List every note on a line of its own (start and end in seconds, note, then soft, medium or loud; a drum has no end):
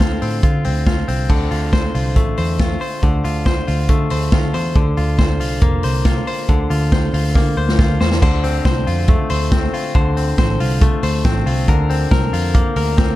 0.00 0.17 D2 medium
0.00 1.29 D3 medium
0.00 0.21 C4 medium
0.00 0.43 F4 medium
0.00 1.33 C5 medium
0.00 kick medium
0.00 snare loud
0.00 closed hi-hat medium
0.22 0.40 A2 medium
0.22 0.65 C4 medium
0.22 open hi-hat medium
0.43 0.67 D3 medium
0.43 0.86 F4 medium
0.43 kick loud
0.43 closed hi-hat medium
0.64 1.02 D2 medium
0.64 1.08 C4 soft
0.64 open hi-hat medium
0.87 1.50 F4 medium
0.87 kick loud
0.87 snare medium
0.87 closed hi-hat medium
1.08 1.27 C2 medium
1.08 3.06 C4 medium
1.08 open hi-hat medium
1.29 1.48 D2 medium
1.29 3.02 D3 medium
1.29 kick medium
1.29 crash medium
1.51 1.88 D2 medium
1.51 1.94 F4 medium
1.51 open hi-hat medium
1.73 2.37 C5 medium
1.73 kick medium
1.73 snare loud
1.73 closed hi-hat medium
1.95 2.16 C2 medium
1.95 2.59 F4 medium
1.95 open hi-hat medium
2.16 2.35 A1 medium
2.16 3.88 A3 medium
2.16 kick medium
2.16 closed hi-hat medium
2.37 2.75 E2 medium
2.37 2.81 C5 medium
2.37 open hi-hat medium
2.59 3.24 F4 medium
2.59 kick loud
2.59 snare loud
2.59 closed hi-hat medium
2.81 3.46 C5 medium
2.81 open hi-hat medium
3.03 3.21 D2 medium
3.03 4.75 D3 medium
3.03 kick loud
3.03 closed hi-hat medium
3.24 3.61 D2 medium
3.24 3.67 F4 medium
3.24 open hi-hat medium
3.46 4.11 C5 medium
3.46 kick loud
3.46 snare loud
3.46 closed hi-hat medium
3.68 3.87 D2 medium
3.68 4.32 F4 medium
3.68 open hi-hat medium
3.89 4.08 D3 medium
3.89 4.80 A3 medium
3.89 kick loud
3.89 closed hi-hat medium
4.10 4.30 D2 medium
4.10 4.54 C5 medium
4.10 open hi-hat medium
4.32 4.55 D2 medium
4.32 4.97 F4 soft
4.32 kick loud
4.32 snare loud
4.32 closed hi-hat medium
4.54 4.73 E2 medium
4.54 5.18 C5 medium
4.54 open hi-hat medium
4.75 4.94 D2 loud
4.75 6.48 D3 medium
4.75 kick loud
4.75 closed hi-hat medium
4.97 5.41 D2 loud
4.97 5.40 F4 medium
4.97 open hi-hat medium
5.19 5.84 C5 medium
5.19 kick loud
5.19 snare medium
5.19 closed hi-hat medium
5.40 5.60 C2 medium
5.40 6.05 F4 soft
5.40 open hi-hat medium
5.61 5.81 F1 medium
5.61 7.34 A#3 medium
5.61 kick loud
5.61 closed hi-hat medium
5.83 6.21 C2 loud
5.83 6.27 C5 medium
5.83 open hi-hat medium
6.05 6.70 F4 medium
6.05 kick loud
6.05 snare loud
6.05 closed hi-hat medium
6.27 6.92 C5 medium
6.27 open hi-hat medium
6.49 6.67 D2 medium
6.49 8.21 D3 medium
6.49 kick medium
6.49 closed hi-hat medium
6.70 7.07 D2 loud
6.70 7.13 F4 medium
6.70 open hi-hat medium
6.92 7.57 C5 medium
6.92 kick loud
6.92 snare loud
6.92 closed hi-hat medium
7.13 7.37 D2 medium
7.13 7.78 F4 medium
7.13 open hi-hat medium
7.35 7.54 D3 medium
7.35 8.26 A#3 medium
7.35 kick loud
7.35 snare medium
7.57 7.76 D2 medium
7.57 8.00 C5 medium
7.69 snare medium
7.79 7.97 D2 medium
7.79 8.87 F4 medium
7.79 kick loud
7.79 snare medium
8.01 8.19 E2 medium
8.01 8.22 C5 medium
8.01 snare medium
8.11 snare medium
8.22 8.59 D2 loud
8.22 9.95 D3 medium
8.22 8.65 C5 medium
8.22 kick loud
8.22 crash medium
8.44 9.51 C4 medium
8.44 open hi-hat medium
8.65 8.84 C2 medium
8.65 9.30 C5 medium
8.65 kick loud
8.65 snare loud
8.65 closed hi-hat medium
8.87 9.15 F2 medium
8.87 9.73 F4 medium
8.87 open hi-hat medium
9.08 10.81 A3 medium
9.08 kick loud
9.08 closed hi-hat medium
9.30 9.67 D2 loud
9.30 9.95 C5 medium
9.30 open hi-hat medium
9.52 10.16 C4 medium
9.52 kick loud
9.52 snare loud
9.52 closed hi-hat medium
9.74 10.60 F4 medium
9.74 open hi-hat medium
9.95 10.32 D2 loud
9.95 11.68 D3 medium
9.95 10.38 C5 medium
9.95 kick loud
9.95 closed hi-hat medium
10.17 11.25 C4 medium
10.17 open hi-hat medium
10.38 10.57 A1 medium
10.38 11.03 C5 medium
10.38 kick loud
10.38 snare loud
10.38 closed hi-hat medium
10.60 10.88 C2 loud
10.60 11.46 F4 medium
10.60 open hi-hat medium
10.81 11.73 A3 medium
10.81 kick loud
10.81 closed hi-hat medium
11.03 11.21 D2 loud
11.03 11.69 C5 medium
11.03 open hi-hat medium
11.25 11.43 A1 loud
11.25 11.89 C4 medium
11.25 kick loud
11.25 snare loud
11.25 closed hi-hat medium
11.46 11.65 C2 medium
11.46 12.33 F4 medium
11.46 open hi-hat medium
11.68 12.05 D2 loud
11.68 13.16 D3 medium
11.68 12.10 A#4 medium
11.68 kick loud
11.68 closed hi-hat medium
11.90 12.97 C4 medium
11.90 open hi-hat medium
12.11 12.30 C2 medium
12.11 12.75 A#4 medium
12.11 kick loud
12.11 snare loud
12.11 closed hi-hat medium
12.33 12.61 F2 medium
12.33 13.16 F4 medium
12.33 open hi-hat medium
12.54 13.16 A#3 medium
12.54 kick loud
12.54 closed hi-hat medium
12.76 13.13 D2 loud
12.76 13.16 A#4 medium
12.76 open hi-hat medium
12.97 13.16 C4 medium
12.97 kick loud
12.97 snare loud
12.97 closed hi-hat medium